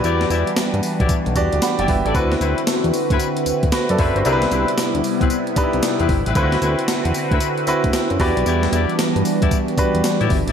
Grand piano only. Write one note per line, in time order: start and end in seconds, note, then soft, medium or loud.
0.00 0.63 D4 medium
0.00 0.64 F#4 medium
0.00 0.64 G4 medium
0.00 0.64 B4 loud
1.36 1.94 D4 medium
1.36 1.95 F#4 medium
1.36 1.95 G4 medium
1.36 1.62 D5 loud
1.62 1.79 F#5 medium
1.62 1.78 B5 medium
1.80 1.88 D5 medium
1.80 1.88 G5 medium
1.88 2.05 B4 medium
1.88 2.04 E5 medium
2.06 2.31 A4 medium
2.06 2.30 D5 medium
2.14 2.92 C4 medium
2.14 2.92 E4 medium
2.14 2.92 F#4 medium
2.14 2.92 B4 medium
3.73 3.89 F#4 medium
3.73 3.89 B4 medium
3.90 3.99 A4 medium
3.90 3.98 D5 medium
3.99 4.15 B4 medium
3.99 4.15 E5 medium
4.17 4.41 F#4 medium
4.17 4.41 C5 medium
4.25 5.02 D4 medium
4.25 5.03 E4 medium
4.25 5.03 G4 medium
4.25 4.34 A#4 medium
4.33 5.06 B4 loud
5.57 6.16 D4 medium
5.57 5.65 D#4 medium
5.57 6.16 G4 medium
5.57 6.16 B4 medium
5.63 6.19 E4 medium
6.36 7.13 C4 medium
6.36 7.13 E4 medium
6.36 6.44 F4 medium
6.36 7.13 B4 medium
6.43 7.16 F#4 medium
7.67 8.20 C4 medium
7.67 8.20 E4 medium
7.67 8.19 F#4 medium
7.67 8.19 B4 medium
8.20 9.05 D4 medium
8.20 9.06 F#4 medium
8.20 9.06 G4 medium
8.20 9.06 B4 loud
9.78 10.37 D4 medium
9.78 10.37 F#4 medium
9.78 10.37 G4 medium
9.78 10.37 B4 medium